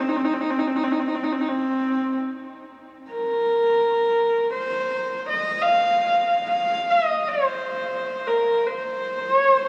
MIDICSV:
0, 0, Header, 1, 2, 480
1, 0, Start_track
1, 0, Tempo, 500000
1, 9298, End_track
2, 0, Start_track
2, 0, Title_t, "Horsehead fiddle"
2, 0, Program_c, 0, 110
2, 5, Note_on_c, 0, 60, 64
2, 85, Note_on_c, 0, 63, 68
2, 100, Note_off_c, 0, 60, 0
2, 160, Note_on_c, 0, 60, 68
2, 174, Note_off_c, 0, 63, 0
2, 235, Note_on_c, 0, 63, 64
2, 250, Note_off_c, 0, 60, 0
2, 323, Note_on_c, 0, 60, 66
2, 338, Note_off_c, 0, 63, 0
2, 396, Note_on_c, 0, 63, 69
2, 410, Note_off_c, 0, 60, 0
2, 487, Note_on_c, 0, 60, 74
2, 502, Note_off_c, 0, 63, 0
2, 567, Note_on_c, 0, 63, 62
2, 581, Note_off_c, 0, 60, 0
2, 647, Note_on_c, 0, 60, 71
2, 662, Note_off_c, 0, 63, 0
2, 732, Note_on_c, 0, 63, 79
2, 747, Note_off_c, 0, 60, 0
2, 804, Note_on_c, 0, 60, 76
2, 818, Note_off_c, 0, 63, 0
2, 881, Note_on_c, 0, 63, 61
2, 896, Note_off_c, 0, 60, 0
2, 958, Note_on_c, 0, 60, 63
2, 972, Note_off_c, 0, 63, 0
2, 1031, Note_on_c, 0, 63, 73
2, 1046, Note_off_c, 0, 60, 0
2, 1107, Note_on_c, 0, 60, 69
2, 1121, Note_off_c, 0, 63, 0
2, 1188, Note_on_c, 0, 63, 64
2, 1203, Note_off_c, 0, 60, 0
2, 1270, Note_on_c, 0, 60, 60
2, 1285, Note_off_c, 0, 63, 0
2, 1353, Note_on_c, 0, 63, 69
2, 1368, Note_off_c, 0, 60, 0
2, 1423, Note_on_c, 0, 60, 75
2, 1437, Note_off_c, 0, 63, 0
2, 2101, Note_off_c, 0, 60, 0
2, 2992, Note_on_c, 0, 70, 69
2, 4291, Note_off_c, 0, 70, 0
2, 4335, Note_on_c, 0, 72, 81
2, 5044, Note_off_c, 0, 72, 0
2, 5080, Note_on_c, 0, 75, 78
2, 5398, Note_on_c, 0, 77, 83
2, 5413, Note_off_c, 0, 75, 0
2, 6232, Note_off_c, 0, 77, 0
2, 6237, Note_on_c, 0, 77, 85
2, 6631, Note_on_c, 0, 75, 70
2, 6646, Note_off_c, 0, 77, 0
2, 6994, Note_on_c, 0, 72, 74
2, 7008, Note_off_c, 0, 75, 0
2, 7938, Note_on_c, 0, 70, 66
2, 7952, Note_off_c, 0, 72, 0
2, 8323, Note_on_c, 0, 72, 69
2, 8338, Note_off_c, 0, 70, 0
2, 8967, Note_off_c, 0, 72, 0
2, 8967, Note_on_c, 0, 73, 69
2, 9139, Note_off_c, 0, 73, 0
2, 9139, Note_on_c, 0, 72, 69
2, 9298, Note_off_c, 0, 72, 0
2, 9298, End_track
0, 0, End_of_file